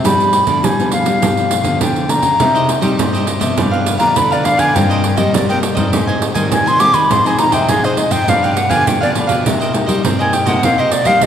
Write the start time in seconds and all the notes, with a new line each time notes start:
0.03 G2 F3 G3 B3 D4 B5, pandeiro
0.20 pandeiro
0.33 pandeiro
0.47 D3 F3 B3 D4, pandeiro
0.63 D3 G3 G#5, pandeiro
0.79 F3 B3 D4, pandeiro
0.92 F5, pandeiro
1.05 F3 G3 B3 D4, pandeiro
1.21 G2 F3 G3 B3 D4, pandeiro
1.37 pandeiro
1.51 pandeiro
1.64 D3 F3 B3 D4, pandeiro
1.80 D3 G5, pandeiro
1.96 pandeiro
2.09 F3 B3 D4 A#5, pandeiro
2.23 C#3, pandeiro
2.39 C3 G3 C4 D#4 G4 C5 D#5, pandeiro
2.55 G4 C5 D#5, pandeiro
2.68 muted cavaquinho stroke, pandeiro
2.81 G3 C4 D#4 G4 C5 D#5, pandeiro
2.98 G2 C4 D#4 G4 C5 D#5, pandeiro
3.13 G3 C4 D#4 G4 C5 D#5, pandeiro
3.27 pandeiro
3.40 C3 F3 B3 D4 G4 C5 D#5, pandeiro
3.57 G2 D4 G4 B4 F5, pandeiro
3.71 G4 B4 F5, pandeiro
3.86 pandeiro
3.98 D3 F3 B3 D4 G4 B4 F5 A#5, pandeiro
4.15 D3 B5, muted cavaquinho stroke, pandeiro
4.31 G4 B4 D5 F5, pandeiro
4.44 F3 B3 D4 G4 B4 F5, pandeiro
4.57 D3 G4 B4 F5 G#5, pandeiro
4.75 G2 D#3 A#3 C4 D#4 A#4 C5 D#5 G5, pandeiro
4.90 A#4 C5 D#5, pandeiro
5.04 muted cavaquinho stroke, pandeiro
5.17 D#3 G3 A#3 C4 A#4 C5 D#5, pandeiro
5.34 G2 G3 D#4 A#4 C5 D5 D#5, pandeiro
5.49 D#3 A#3 C4 A#4 C5 D#5 G5, pandeiro
5.63 pandeiro
5.75 G2 G3 C4 D#4 A#4 C5 D#5, pandeiro
5.92 G#2 G4 C5 D#5 G#5, pandeiro
6.07 C5 D#5 G#5, pandeiro
6.22 pandeiro
6.34 D#3 G3 C4 D#4 C5 D#5 G#5, pandeiro
6.51 D#3 G#5, muted cavaquinho stroke, pandeiro
6.66 C5 D#5 G#5 C6, pandeiro
6.79 G3 C4 D#4 G4 C5 D#5 G#5 D6, pandeiro
6.93 D#3 C5 D#5 G#5 B5, pandeiro
7.10 G#2 F3 C4 D#4 F4 G#4 C5 D#5 C6, pandeiro
7.25 F3 C4 D#4 G#4 C5 D#5 G#5, pandeiro
7.38 F3 C4 D#4 A#5, muted cavaquinho stroke, pandeiro
7.52 C3 G#4 C5 D#5 G5, pandeiro
7.69 G#2 F3 G#3 C4 D#4 F4 G#4 C5 D#5 G#5, pandeiro
7.84 F3 C4 D#4 G#4 C5 D#5, pandeiro
7.97 D#5, pandeiro
8.11 G#2 G#4 C5 D#5 G5, pandeiro
8.28 G2 F3 B3 D4 G4 B4 F5, pandeiro
8.43 G4 B4 F5 G5, pandeiro
8.57 F#5, pandeiro
8.70 D3 F3 B3 D4 G4 B4 F5 G#5, pandeiro
8.86 D3 G5, muted cavaquinho stroke, pandeiro
9.01 F3 B3 D4 G4 B4 D5 F5, pandeiro
9.14 F3 B3 D4 G4 B4 F5, pandeiro
9.27 B2 G4 B4 F5, pandeiro
9.45 C3 A#3 D#4 G4 A#4 C5 D#5, pandeiro
9.60 A#4 C5 D#5, pandeiro
9.73 A#3 D#4 G4, muted cavaquinho stroke, pandeiro
9.86 G3 A#4 C5 D#5, pandeiro
10.03 G2 C4 D#4 A#4 C5 D#5, pandeiro
10.19 A#3 D#4 G4 A#4 C5 D#5 G#5, pandeiro
10.33 G5, pandeiro
10.46 C3 A#3 D#4 G4 A#4 C5 D#5 F#5, pandeiro
10.63 C3 A#3 C4 D#4 G4 A#4 C5 D#5 F5, pandeiro
10.78 A#4 C5 D#5, pandeiro
10.92 D5, pandeiro
11.04 G3 A#3 D#4 G4 A#4 C5 D#5 F5, pandeiro
11.22 G2 G3, muted cavaquinho stroke, pandeiro